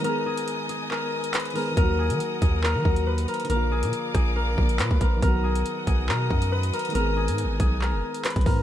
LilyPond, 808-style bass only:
\new Staff \with { instrumentName = "808-style bass" } { \clef bass \time 4/4 \key aes \dorian \tempo 4 = 139 r1 | ees,8. ees16 r8 ees,8. ees16 ees,4 r8 | bes,,8. bes,16 r8 bes,,4 bes,,8 bes,16 d,16 bes,,8 | b,,4 r8 b,,8 b,8 fis,4 r8 |
aes,,8. aes,16. aes,,16. ces,8. ges,,16 r8. ces,16 aes,8 | }